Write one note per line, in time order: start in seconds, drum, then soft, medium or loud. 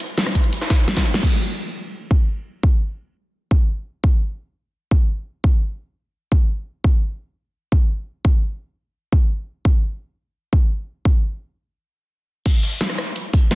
0.00 closed hi-hat medium
0.00 ride medium
0.18 snare loud
0.18 closed hi-hat medium
0.18 closed hi-hat loud
0.26 cross-stick medium
0.26 snare soft
0.26 closed hi-hat soft
0.35 kick medium
0.35 closed hi-hat medium
0.35 ride medium
0.44 closed hi-hat soft
0.53 closed hi-hat medium
0.53 closed hi-hat loud
0.61 snare medium
0.61 closed hi-hat soft
0.70 kick loud
0.70 snare loud
0.70 closed hi-hat medium
0.70 ride medium
0.88 snare loud
0.88 closed hi-hat loud
0.88 open hi-hat medium
0.97 kick medium
0.97 snare loud
0.97 snare medium
0.97 closed hi-hat medium
1.06 closed hi-hat medium
1.06 ride medium
1.14 snare loud
1.14 open hi-hat medium
1.23 kick loud
1.23 crash medium
2.11 kick loud
2.63 kick loud
3.51 kick loud
4.04 kick loud
4.91 kick loud
5.44 kick loud
6.32 kick loud
6.84 kick loud
7.72 kick loud
8.25 kick loud
9.13 kick medium
9.65 kick loud
10.53 kick medium
11.05 kick loud
12.46 kick loud
12.46 closed hi-hat medium
12.46 closed hi-hat loud
12.46 crash loud
12.63 closed hi-hat medium
12.81 snare loud
12.81 closed hi-hat medium
12.81 closed hi-hat loud
12.90 cross-stick medium
12.98 cross-stick medium
12.98 snare soft
12.98 closed hi-hat medium
13.16 closed hi-hat medium
13.16 closed hi-hat loud
13.33 kick loud
13.33 closed hi-hat medium
13.51 snare loud
13.51 closed hi-hat medium
13.51 closed hi-hat loud